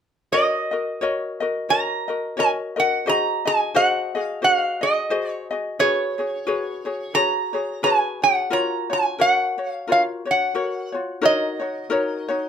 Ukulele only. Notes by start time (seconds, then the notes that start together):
0.32 F#4 A#4 C#5 D#5
0.71 F#4 A#4 D#5
1.01 F#4 A#4 C#5 D#5
1.40 F#4 A#4 D#5
1.69 F#4 A#4 C#5 D#5
2.08 F#4 A#4 D#5
2.37 F#4 A#4 C#5 D#5
2.76 F#4 A#4 D#5
3.06 F#4 G#4 C5 D#5
3.45 F#4 G#4 D#5
3.75 F#4 G#4 C5 D#5
4.15 F#4 G#4 D#5
4.42 F#4 G#4 C5 D#5
4.81 F#4 G#4 D#5
5.10 F#4 G#4 C5 D#5
5.51 F#4 G#4 D#5
5.79 F#4 G#4 B4 C#5
6.18 F#4 G#4 C#5
6.47 F#4 G#4 B4 C#5
6.85 F#4 G#4 C#5
7.14 F#4 G#4 B4 C#5
7.53 F#4 G#4 C#5
7.83 F#4 G#4 B4 C#5
8.22 F#4 G#4 C#5
8.50 F4 F#4 A#4 C#5
8.90 F4 F#4 C#5
9.19 F#4 A#4 C#5
9.58 F#4 C#5
9.87 F4 F#4 A#4 C#5
10.25 F#4 C#5
10.55 F#4 A#4 C#5
10.92 F4 F#4 C#5
11.21 D#4 F#4 A#4 C#5
11.59 D#4 F#4 C#5
11.90 D#4 F#4 A#4 C#5
12.28 D#4 F#4 C#5